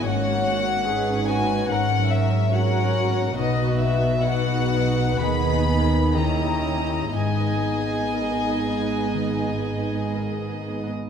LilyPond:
<<
  \new Staff \with { instrumentName = "Violin section" } { \time 4/4 \key gis \minor \tempo 4 = 63 fis''4. gis''8 fis''8 e''8 fis''4 | dis''8 e''8 fis''4 b''4 ais''4 | gis''2. r4 | }
  \new Staff \with { instrumentName = "Violin section" } { \time 4/4 \key gis \minor << { cis''4 b'4 ais'4 cis''4 | b'4 b'4 b'4 dis''4 | dis''1 | } \\ { fis'4 gis'8 fis'8 ais'4 ais'4 | fis'4 fis'4 gis'4 g'4 | gis'1 | } >> }
  \new Staff \with { instrumentName = "Harp" } { \time 4/4 \key gis \minor \tuplet 3/2 { gis,8 ais8 fis'8 gis'8 fis'8 ais8 gis,8 fis8 fis'8 gis'8 fis'8 ais8 } | \tuplet 3/2 { b,8 b8 fis'8 gis'8 fis'8 b8 dis8 dis'8 <dis' gis'>8 dis8 cis'8 <e' g'>8 } | \tuplet 3/2 { gis,8 b8 gis'8 ais'8 gis'8 b8 dis8 b8 gis'8 ais'8 gis'8 b8 } | }
  \new Staff \with { instrumentName = "Viola section" } { \time 4/4 \key gis \minor << { cis'4 dis'4 cis'4 fis'4 | dis'4 dis'4 dis'4 e'4 | dis'1 | } \\ { ais8 ais8 cis'2 cis'4 | b4 b4 b4 cis'4 | b1 | } >> }
  \new Staff \with { instrumentName = "Cello section" } { \clef bass \time 4/4 \key gis \minor gis,1 | b,2 dis2 | gis,1 | }
  \new Staff \with { instrumentName = "Double bass section" } { \clef bass \time 4/4 \key gis \minor gis,,1 | b,,2 dis,2 | gis,,1 | }
>>